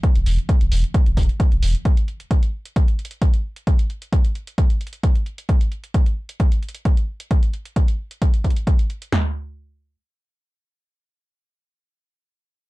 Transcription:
<<
  \new Staff \with { instrumentName = "Sub bass" } { \clef bass \time 4/4 \key c \major \tempo 4 = 132 r16 e,,16 e,,16 r8 e,,16 e,,16 r8 e,,16 e,,16 r8 e,,16 e,,16 r16 | r1 | r1 | r1 |
r1 | r1 | r1 | }
  \new DrumStaff \with { instrumentName = "Drums" } \drummode { \time 4/4 <hh bd>16 hh16 hho16 hh16 <hh bd>16 hh16 hho16 hh16 <hh bd>16 hh16 <hho bd>32 hh32 hh16 <hh bd>16 hh16 hho16 hh16 | <hh bd>16 hh16 hh16 hh16 <hh bd>16 hh8 hh16 <hh bd>16 hh16 hh32 hh32 hh16 <hh bd>16 hh8 hh16 | <hh bd>16 hh16 hh16 hh16 <hh bd>16 hh16 hh16 hh16 <hh bd>16 hh16 hh32 hh32 hh16 <hh bd>16 hh16 hh16 hh16 | <hh bd>16 hh16 hh16 hh16 <hh bd>16 hh8 hh16 <hh bd>16 hh16 hh32 hh32 hh16 <hh bd>16 hh8 hh16 |
<hh bd>16 hh16 hh16 hh16 <hh bd>16 hh8 hh16 <hh bd>16 hh16 <hh bd>32 hh32 hh16 <hh bd>16 hh16 hh16 hh16 | <sn tomfh>4 r4 r4 r4 | r4 r4 r4 r4 | }
>>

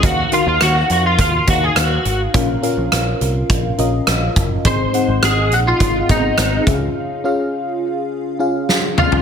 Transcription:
<<
  \new Staff \with { instrumentName = "Clean electric guitar" } { \time 4/4 \key ees \dorian \tempo 4 = 104 ges'8 f'16 f'16 ges'8 ges'16 f'16 f'8 ges'16 aes'16 ges'8. r16 | r1 | c''4 aes'8 ges'16 f'8. ees'4 r8 | r2. r8 f'8 | }
  \new Staff \with { instrumentName = "FM electric piano" } { \time 4/4 \key ees \dorian <ees' ges' bes' f''>8 <ees' ges' bes' f''>4. r8 <ees' ges' bes' f''>4 r8 | <des' f' bes' f''>8 <des' f' bes' f''>4. r8 <des' f' bes' ees''>4 r8 | <c' ees' aes' ees''>8 <c' ees' aes' ges''>4. r8 <ces' c' ees' aes' ees''>4 <des' f' aes' fes'' f''>8~ | <des' f' aes' fes'' f''>8 <des' f' aes' f''>4. r8 <des' f' aes' f''>4 r8 | }
  \new Staff \with { instrumentName = "FM electric piano" } { \clef bass \time 4/4 \key ees \dorian ees4. r2 r8 | bes,4. r2 r8 | aes,4. r2 des8~ | des4 r2. | }
  \new Staff \with { instrumentName = "Picked electric bass" } { \clef bass \time 4/4 \key ees \dorian ees,8 r16 ees,16 ees,8 f,8 ees,8 ees,8 ees,8 aes,,8 | bes,,8 r16 bes,,16 bes,,8 c,8 bes,,8 bes,,8 bes,,8 ges,,8 | aes,,8 r16 aes,,16 aes,,8 bes,,8 aes,,8 aes,,8 aes,,8 des,8 | r1 | }
  \new DrumStaff \with { instrumentName = "Drums" } \drummode { \time 4/4 <hh bd>8 hh8 <hh ss>8 hh8 <hh bd>8 <hh bd>8 <hh ss>8 hh8 | <hh bd>8 hh8 <hh ss>8 hh8 <hh bd>8 hh8 <hh ss>8 <hh bd>8 | <hh bd>8 hh8 <hh ss>8 hh8 <hh bd>8 <hh bd>8 <hh ss>8 <hh bd>8 | r4 r4 r4 sn8 toml16 tomfh16 | }
>>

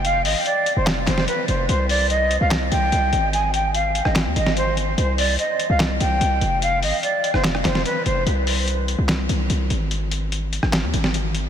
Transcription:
<<
  \new Staff \with { instrumentName = "Flute" } { \time 4/4 \key aes \lydian \tempo 4 = 146 f''8 ees''8 d''8. c''16 r8 c''8 b'8 c''8 | c''8 d''8 ees''8. f''16 r8 g''4. | aes''8 g''8 f''8. ees''16 r8 ees''8 c''8 r8 | c''8 d''8 ees''8. f''16 r8 g''4. |
f''8 ees''8 d''8. c''16 r8 c''8 b'8 c''8 | r1 | r1 | }
  \new Staff \with { instrumentName = "808-style bass" } { \clef bass \time 4/4 \key aes \lydian f,,8 aes,,16 r4 f,,8. f,,8 r8 f,,8 | c,4.~ c,16 c,8. c,8 c,8 aes,,8~ | aes,,4.~ aes,,16 aes,,8 ees,16 aes,,4. | c,4 r8. c,8. c,8 c,8 f,,8~ |
f,,8 aes,,16 r4 f,,8. f,,8 r8 f,,8 | c,4.~ c,16 c,8. c,8 c,8 aes,,8~ | aes,,4.~ aes,,16 aes,,8 ees,16 aes,,4. | }
  \new DrumStaff \with { instrumentName = "Drums" } \drummode { \time 4/4 hh8 hho8 hh8 hh8 <hc hh sn>8 <hc hh sn>16 sn16 hh8 hh8 | hh8 hho8 hh8 hh8 <hc hh sn>8 hh8 hh8 hh8 | hh8 hh8 hh8 hh16 ss16 <hc hh sn>8 hh16 sn16 hh8 hh8 | hh8 hho8 hh8 hh8 <hc hh sn>8 hh8 hh8 hh8 |
hh8 hho8 hh8 hh16 ss16 <hc hh sn>16 ss16 <hc hh sn>16 sn16 hh8 hh8 | hh8 hho8 hh8 hh8 <hc hh sn>8 hh8 hh8 hh8 | hh8 hh8 hh8 hh16 ss16 <hc hh sn>8 hh16 sn16 hh8 hh8 | }
>>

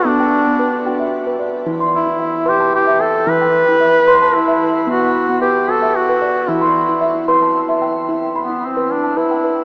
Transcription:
<<
  \new Staff \with { instrumentName = "Steel tongue drum" } { \time 3/4 \key e \minor \tempo 4 = 112 << { d''16 g''8. b'8 g''16 e''8. d''8~ | d''16 c'''8. e''8 c'''16 a''8. g''8~ | g''16 g''8. e''8 c'''16 a''8. r8 | r16 fis''8. b'8 g''16 e''8. d''8~ |
d''16 c'''8. e''8 c'''16 a''8. g''8~ | g''16 r16 b''8. r8 a''8 g''8. | } \\ { r8. b8 r16 fis'8 r16 b'8 r16 | e'8 r16 e'8 r16 b'8 r16 e''8 r16 | e'8 r16 e'8 r16 b'8 r16 e''8 r16 | b8 r16 b8 r16 fis'8 r16 b'8 r16 |
e'8 r16 e'8 r16 b'8 r16 e''8 r16 | e'8 r16 e'8 b'8 r16 b'8 b'8 | } >> }
  \new Staff \with { instrumentName = "Steel tongue drum" } { \clef bass \time 3/4 \key e \minor b2 r4 | e2 r4 | e2 r4 | r2. |
e2 r4 | r2. | }
  \new Staff \with { instrumentName = "Duduk" } { \time 3/4 \key e \minor d'4. r4. | r8 e'4 g'8 g'8 a'8 | b'2 e'4 | fis'4 g'8 a'8 fis'4 |
e'4. r4. | r8 b8 c'8 d'8 e'4 | }
>>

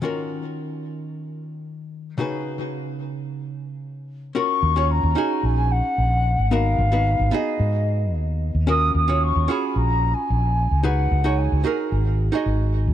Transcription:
<<
  \new Staff \with { instrumentName = "Flute" } { \time 4/4 \key ees \minor \tempo 4 = 111 r1 | r1 | des'''4 bes''4 aes''8 ges''4. | f''4. ees''4. r4 |
ees'''8 ees'''8 des'''8 ces'''8 \tuplet 3/2 { bes''4 aes''8~ } aes''4 | ges''4 aes''4 r2 | }
  \new Staff \with { instrumentName = "Hollow-body jazz guitar" } { \time 4/4 \key ees \minor <ees des' f' ges' bes'>1 | <des ees' ges' aes' ces''>1 | <des' f' ges' bes'>8. <des' f' ges' des''>8. <des' ees' ges' aes'>2~ <des' ees' ges' aes'>8 | <ces' ees' ges' bes'>8. <ces' ees' ges' ces''>8. <ces' ees' ges' aes'>2~ <ces' ees' ges' aes'>8 |
<des' f' ges' bes'>8. <des' f' ges' des''>8. <des' f' ges' aes'>2~ <des' f' ges' aes'>8 | <ees' ges' aes' ces''>8. <ees' ges' aes' des''>8. <ees' ges' aes' bes'>4~ <ees' ges' aes' bes'>16 <ees' ges' aes' ees''>4~ <ees' ges' aes' ees''>16 | }
  \new Staff \with { instrumentName = "Fretless electric bass" } { \clef bass \time 4/4 \key ees \minor r1 | r1 | r8 ees,8. ees,16 r8 bes,,8. r16 bes,,8. aes,,16~ | aes,,8 aes,,8. aes,,16 r8 aes,4 ees,8. ees,16~ |
ees,8 ees,8. ees,16 r8 bes,,8. r16 bes,,8. des,16~ | des,8 des,8. des,16 r8 aes,,8. r16 aes,,8. ees,16 | }
>>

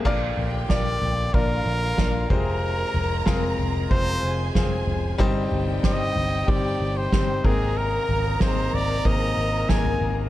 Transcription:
<<
  \new Staff \with { instrumentName = "Violin section" } { \time 4/4 \key bes \mixolydian \tempo 4 = 93 <g' g''>2 <f' f''>4. <bes' bes''>8~ | <bes' bes''>2~ <bes' bes''>8 <aes' aes''>4. | <g' g''>2.~ <g' g''>8 <bes' bes''>8~ | <bes' bes''>1 | }
  \new Staff \with { instrumentName = "Trumpet" } { \time 4/4 \key bes \mixolydian r4 d''4 bes'4. bes'8~ | bes'4. r8 c''4 r4 | r4 ees''4 d''8. c''8. aes'8 | bes'4 c''8 d''8 ees''4 aes''8. r16 | }
  \new Staff \with { instrumentName = "Grand piano" } { \time 4/4 \key bes \mixolydian <bes d' f' bes' d''>8. r16 <bes d' f' bes' d''>8. r16 <bes d' f' bes' d''>8. r16 <bes d' f' bes' f''>8 <aes c' f' g' aes' c''>8~ | <aes c' f' g' aes' c''>8 r8 <aes c' f' aes' bes'>8. r16 <aes c' f' aes' c''>8. r16 <aes c' f' aes' c''>8. r16 | <g c' ees' g' c''>8. r16 <g c' d' ees' g' c''>8. r16 <g c' ees' g' c''>8. r16 <g c' ees' g' c''>8 <bes c' ees' aes' bes'>8~ | <bes c' ees' aes' bes'>8 r8 <bes c' ees' aes' c''>8. r16 <bes c' ees' aes' c''>8. r16 <bes c' ees' aes' bes'>8. r16 | }
  \new Staff \with { instrumentName = "Grand piano" } { \clef bass \time 4/4 \key bes \mixolydian <bes, f>4. r2 c8~ | c4 r2. | g,4. r2 <aes, ees>8~ | <aes, ees>4 r2. | }
  \new Staff \with { instrumentName = "Tonewheel organ" } { \time 4/4 \key bes \mixolydian f'1~ | f'1 | ees'2.~ ees'8 aes'8~ | aes'1 | }
  \new Staff \with { instrumentName = "Tonewheel organ" } { \clef bass \time 4/4 \key bes \mixolydian << { bes2.~ bes8 aes8~ | aes1 | g2.~ g8 bes8~ | bes1 | } \\ { d2.~ d8 c8~ | c1~ | c1~ | c1 | } >> }
  \new Staff \with { instrumentName = "Picked electric bass" } { \clef bass \time 4/4 \key bes \mixolydian bes,,8 bes,,8 bes,,8 bes,,8 bes,,8 bes,,8 bes,,8 f,,8~ | f,,8 f,,8 f,,8 f,,8 f,,8 f,,8 f,,8 f,,8 | g,,8 g,,8 g,,8 g,,8 g,,8 g,,8 g,,8 aes,,8~ | aes,,8 aes,,8 aes,,8 aes,,8 aes,,8 aes,,8 aes,,8 aes,,8 | }
  \new DrumStaff \with { instrumentName = "Drums" } \drummode { \time 4/4 <cymc bd>8 <cymr tomfh>8 <bd sn>8 <cymr tomfh>16 cymr16 <bd cymr>8 cymr8 <bd cymr sn>8 <bd cymr tomfh>8 | cymr8 <cymr tomfh>16 cymr16 <bd sn>8 <cymr tomfh>16 cymr16 <bd cymr>8 cymr8 <bd cymr sn>8 <cymr tomfh>8 | bd8 <cymr tomfh>16 cymr16 <bd sn>8 <cymr tomfh>16 cymr16 <bd cymr>8 cymr8 <bd sn>8 <bd cymr tomfh>8 | cymr8 <cymr tomfh>8 <bd sn>8 <cymr tomfh>8 <bd cymr>8 cymr8 <bd cymr sn>16 tomfh16 <cymr tomfh>8 | }
>>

